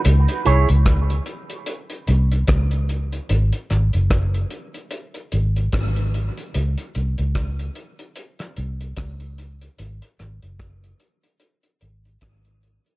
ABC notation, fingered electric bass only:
X:1
M:4/4
L:1/16
Q:"Swing 16ths" 1/4=74
K:F#dor
V:1 name="Fingered electric bass" clef=bass
C,, z ^B,,, C,,3 z4 B,,,2 C,,4 | G,,, z G,,, F,,,3 z4 G,,,2 G,,,3 z | C,, z ^B,,, C,,3 z4 B,,,2 C,,4 | G,,, z G,,, F,,,3 z4 G,,,2 G,,,3 z |]